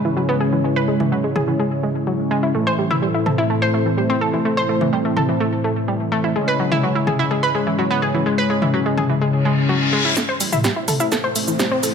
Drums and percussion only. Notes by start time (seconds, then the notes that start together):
1.00 mid tom
1.36 mid tom
2.91 mid tom
3.26 mid tom
4.81 mid tom
5.17 mid tom
6.72 mid tom
7.07 mid tom
8.62 mid tom
8.98 mid tom
10.17 snare, shaker
10.40 open hi-hat, shaker
10.53 mid tom, shaker
10.64 snare, shaker
10.88 open hi-hat, mid tom, shaker
11.00 shaker
11.12 snare, shaker
11.36 open hi-hat, shaker
11.48 shaker
11.59 snare, shaker
11.83 open hi-hat, shaker